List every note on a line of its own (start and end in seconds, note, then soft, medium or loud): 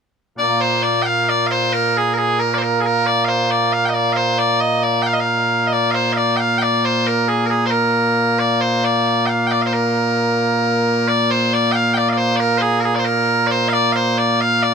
0.38 14.74 A#2 medium
0.38 14.74 A#3 medium
0.38 0.61 D5 loud
0.61 0.83 C5 medium
0.83 1.02 D5 medium
1.02 1.29 F5 loud
1.02 1.06 G5 loud
1.29 1.47 D5 medium
1.47 1.51 F5 medium
1.51 1.73 C5 medium
1.73 1.97 A#4 loud
1.97 2.14 G#4 medium
2.14 2.39 G#4 medium
2.14 2.17 A#4 medium
2.39 2.54 A#4 loud
2.54 2.62 C5 medium
2.54 2.58 D5 medium
2.62 2.80 A#4 medium
2.80 2.86 G#4 medium
2.86 3.06 A#4 loud
3.06 3.25 D5 loud
3.25 3.51 C5 medium
3.25 3.28 F5 medium
3.51 3.73 D5 medium
3.73 3.85 F5 loud
3.85 3.94 D#5 medium
3.85 3.89 G5 medium
3.94 4.13 D5 medium
4.13 4.38 C5 medium
4.13 4.16 F5 medium
4.38 4.61 D5 loud
4.61 4.83 D#5 medium
4.83 5.02 D5 medium
5.02 5.07 G5 loud
5.07 5.13 F5 loud
5.13 5.20 D#5 medium
5.20 5.67 F5 medium
5.67 5.73 D#5 medium
5.73 5.91 D5 loud
5.91 6.13 C5 medium
5.91 5.94 F5 medium
6.13 6.17 F5 medium
6.17 6.37 D5 medium
6.37 6.58 F5 medium
6.37 6.40 G5 medium
6.58 6.62 G5 medium
6.62 6.85 D5 medium
6.85 7.07 C5 medium
7.07 7.28 A#4 medium
7.28 7.46 G#4 medium
7.46 7.50 A#4 medium
7.50 7.66 G#4 medium
7.66 7.71 C5 medium
7.71 8.39 A#4 medium
8.39 8.61 D5 medium
8.61 8.84 C5 medium
8.84 9.26 D5 medium
9.26 9.47 F5 medium
9.26 9.30 G5 medium
9.47 9.51 G5 medium
9.51 9.62 D5 medium
9.62 9.66 F5 medium
9.66 9.73 C5 medium
9.73 11.08 A#4 medium
11.08 11.31 D5 loud
11.31 11.53 C5 medium
11.53 11.72 D5 loud
11.72 11.94 F5 loud
11.72 11.75 G5 loud
11.94 12.09 D5 medium
11.94 11.97 G5 medium
12.09 12.17 D5 medium
12.09 12.12 F5 medium
12.17 12.36 C5 medium
12.36 12.58 A#4 loud
12.36 12.40 D5 loud
12.58 12.80 G#4 loud
12.58 12.61 C5 loud
12.80 12.84 A#4 medium
12.84 12.95 G#4 medium
12.95 13.05 C5 medium
12.95 12.99 D5 medium
13.05 13.47 A#4 loud
13.47 13.51 D5 loud
13.51 13.68 C5 loud
13.68 13.73 F5 loud
13.73 13.92 D5 loud
13.92 14.18 C5 medium
13.92 13.96 F5 medium
14.18 14.41 D5 medium
14.41 14.63 F5 loud
14.63 14.74 D5 medium